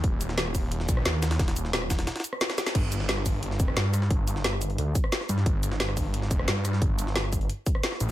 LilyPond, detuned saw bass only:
\new Staff \with { instrumentName = "Detuned saw bass" } { \clef bass \time 4/4 \key ees \lydian \tempo 4 = 177 ees,,2~ ees,,8 bes,,8 ees,4 | ees,,8 ees,,4. r2 | g,,2~ g,,8 f,,8 g,4 | g,,8 g,,4. d,8 r4 g,8 |
g,,2~ g,,8 f,,8 g,4 | g,,8 g,,4. r4. a,,8 | }